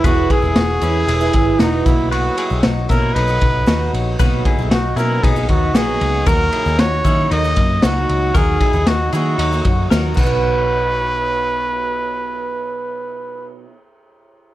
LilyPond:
<<
  \new Staff \with { instrumentName = "Trumpet" } { \time 4/4 \key b \major \tempo 4 = 116 fis'8 gis'2~ gis'8 dis'8 e'8 | fis'4 r8 ais'8 b'4. r8 | r4 fis'8 ais'8 gis'8 fis'8 gis'4 | ais'4 cis''4 dis''4 fis'4 |
gis'4 fis'8 fis'4. r8 b'8~ | b'1~ | b'1 | }
  \new Staff \with { instrumentName = "Clean electric guitar" } { \time 4/4 \key b \major <gis' b'>8 <e' gis'>8 <b fis'>8 <cis' e'>8 <e' gis'>4 <dis' fis'>4 | <fis' b'>8 <e' gis'>8 <dis' fis'>8 <cis' e'>8 <b dis'>4 <dis' fis'>4 | <fis' b'>8 <e' gis'>8 <dis' fis'>8 <cis' e'>8 <b dis'>4 <dis' fis'>4 | <fis' ais'>8 <e' gis'>8 <dis' fis'>8 <cis' e'>8 <ais dis'>4 <dis' fis'>4 |
<fis' ais'>8 <e' gis'>8 <dis' fis'>8 <e' gis'>8 <dis' fis'>4 <fis' ais'>8 fis'8~ | fis'2. r4 | r1 | }
  \new Staff \with { instrumentName = "Twelve-string acoustic guitar" } { \time 4/4 \key b \major <e gis b e'>8. <gis b e'>8. <e gis b e'>8. <e gis b e'>8. <e gis b e'>8 <b, fis ais dis'>8~ | <b, fis ais dis'>8. <fis ais dis'>8. <b, fis ais dis'>8. <b, fis dis'>8. <b, fis ais dis'>4 | <b, fis ais dis'>8. <fis ais dis'>8. <b, fis ais dis'>8. <b, fis ais dis'>8. <b, fis ais dis'>4 | <dis fis ais dis'>8. <fis ais dis'>8. <dis fis ais dis'>8. <dis fis ais dis'>8. <dis fis ais dis'>4 |
<dis fis ais dis'>8. <fis ais dis'>8. <dis fis ais dis'>8. <dis fis ais dis'>8. <dis fis ais dis'>8 <b, fis b dis'>8~ | <b, fis b dis'>1~ | <b, fis b dis'>1 | }
  \new Staff \with { instrumentName = "Picked electric bass" } { \clef bass \time 4/4 \key b \major e,,8 r16 e,,16 e,,8 e,8 e,,8 gis,,8 e,,8 b,,8~ | b,,8 r16 b,,16 b,,8 b,8 b,,8 b,,8 dis,8 ais,,8 | b,,8 r16 b,,16 b,,8 b,8 b,,8 dis,8 ais,,8 cis,8 | dis,8 r16 dis,16 dis,8 dis8 dis,8 fis,8 cis,8 cis,8 |
dis,8 r16 dis,16 dis,8 dis8 dis,8 fis,8 dis,8 b,,8~ | b,,1~ | b,,1 | }
  \new DrumStaff \with { instrumentName = "Drums" } \drummode { \time 4/4 <bd cymr>8 <bd cymr>8 <cymr sn>8 cymr8 cymr8 <bd cymr>8 <cymr sn>8 <bd cymr>8 | cymr8 cymr8 <cymr sn>8 <bd cymr>8 cymr8 <bd cymr>8 <cymr sn>8 cymr8 | <bd cymr>8 <bd cymr>8 <cymr sn>8 cymr8 <bd cymr>8 <bd cymr>8 <cymr sn>8 cymr8 | <bd cymr>8 cymr8 <cymr sn>8 <bd cymr>8 cymr8 <bd cymr>8 <cymr sn>8 cymr8 |
<bd cymr>8 <bd cymr>8 <cymr sn>8 cymr8 cymr8 <bd cymr>8 <cymr sn>8 <cymc bd>8 | r4 r4 r4 r4 | r4 r4 r4 r4 | }
>>